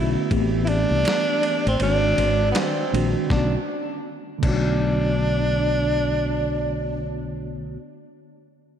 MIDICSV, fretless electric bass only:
0, 0, Header, 1, 2, 480
1, 0, Start_track
1, 0, Key_signature, 2, "minor"
1, 0, Tempo, 750000
1, 197, Time_signature, 4, 2, 24, 8
1, 5628, End_track
2, 0, Start_track
2, 0, Title_t, "Fretless electric bass"
2, 0, Program_c, 0, 35
2, 0, Note_on_c, 0, 35, 80
2, 91, Note_off_c, 0, 35, 0
2, 201, Note_on_c, 0, 33, 96
2, 542, Note_off_c, 0, 33, 0
2, 580, Note_on_c, 0, 36, 74
2, 663, Note_off_c, 0, 36, 0
2, 1065, Note_on_c, 0, 33, 77
2, 1146, Note_off_c, 0, 33, 0
2, 1153, Note_on_c, 0, 32, 85
2, 1366, Note_off_c, 0, 32, 0
2, 1393, Note_on_c, 0, 32, 74
2, 1606, Note_off_c, 0, 32, 0
2, 1877, Note_on_c, 0, 34, 77
2, 2008, Note_off_c, 0, 34, 0
2, 2115, Note_on_c, 0, 35, 85
2, 2272, Note_off_c, 0, 35, 0
2, 2836, Note_on_c, 0, 35, 86
2, 4971, Note_off_c, 0, 35, 0
2, 5628, End_track
0, 0, End_of_file